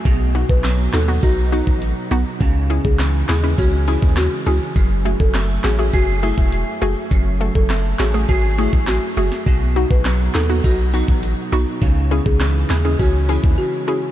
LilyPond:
<<
  \new Staff \with { instrumentName = "Marimba" } { \time 4/4 \key fis \dorian \tempo 4 = 102 r8. b'16 r8 a'16 r16 fis'16 r16 dis'16 r4 r16 | r8. gis'16 r8 gis'16 r16 fis'16 r16 e'16 r16 fis'16 r16 fis'16 r16 | r8. a'16 r8 gis'16 r16 fis'16 r16 e'16 r4 r16 | r8. a'16 r8 gis'16 r16 fis'16 r16 e'16 r16 fis'16 r16 fis'16 r16 |
r8. b'16 r8 a'16 r16 fis'16 r16 dis'16 r4 r16 | r8. gis'16 r8 gis'16 r16 fis'16 r16 e'16 r16 fis'16 r16 fis'16 r16 | }
  \new Staff \with { instrumentName = "Synth pluck" } { \time 4/4 \key fis \dorian r8 <b dis' fis'>16 r8. <dis' fis'>16 <b dis' fis'>16 r8 <b dis' fis'>16 r8. <b dis' fis'>16 r16 | r8 <cis' e' gis'>16 r8. <e' gis'>16 <cis' e' b'>16 r8 <cis' e' gis'>16 r8. <cis' e' gis'>16 r16 | r8 <a fis' gis'>16 r8. <fis' gis'>16 <a fis' gis'>16 r8 <a fis' gis'>16 r8. <a fis' gis'>16 r16 | r8 <a fis' a'>16 r8. <fis' gis'>16 <a fis' gis'>16 r8 <a fis' gis'>16 r8. <a fis' gis'>16 r16 |
r8 <b dis' fis'>16 r8. <dis' gis'>16 <b dis' fis'>16 r8 <b dis' fis'>16 r8. <b dis' fis'>16 r16 | r8 <cis' e' gis'>16 r8. <e' gis'>16 <cis' e' gis'>16 r8 <cis' e' gis'>16 r8. <cis' e' gis'>16 r16 | }
  \new Staff \with { instrumentName = "Clean electric guitar" } { \clef bass \time 4/4 \key fis \dorian b,4 fis8 b8 dis'8 fis4. | cis4 e8 gis8 cis'8 e4. | fis,4 a8 cis'8 gis'8 a4. | fis,4 a8 cis'8 gis'8 a4. |
b,4 fis8 b8 dis'8 fis4. | cis4 e8 gis8 cis'8 e4. | }
  \new Staff \with { instrumentName = "Sub bass" } { \clef bass \time 4/4 \key fis \dorian b,,8. b,,8. dis,8 b,,8. a,,8 r16 b,,16 r16 | cis,8. cis,8. dis,8 cis,8. dis,8 r16 cis,16 r16 | fis,,8. fis,,8. a,,8 fis,,8. e,,8 r16 fis,,16 r16 | fis,,8. fis,,8. a,,8 gis,,8. a,,8 r16 fis,,16 r16 |
b,,8. b,,8. dis,8 b,,8. a,,8 r16 b,,16 r16 | cis,8. cis,8. dis,8 cis,8. dis,16 r4 | }
  \new DrumStaff \with { instrumentName = "Drums" } \drummode { \time 4/4 <hh bd>8 hh16 bd16 <hc hh sn>8 <hc hh sn>8 <hh bd>8 hh16 bd16 hh8 hh8 | <hh bd>8 hh16 bd16 <hc hh sn>8 <hc hh sn>8 <hh bd>8 hh16 bd16 <hc hh ss sn>8 hh8 | <hh bd>8 hh16 bd16 <hc hh sn>8 <hc hh sn>8 <hh bd>8 hh16 bd16 hh8 hh8 | <hh bd>8 hh16 bd16 <hc hh sn>8 <hc hh sn>8 <hh bd>8 hh16 bd16 <hc hh sn>8 hh16 sn16 |
<hh bd>8 hh16 bd16 <hc hh sn>8 <hc hh sn>8 <hh bd>8 hh16 bd16 hh8 hh8 | <hh bd>8 hh16 bd16 <hc hh sn>8 <hc hh sn>8 <hh bd>8 hh16 bd16 r4 | }
>>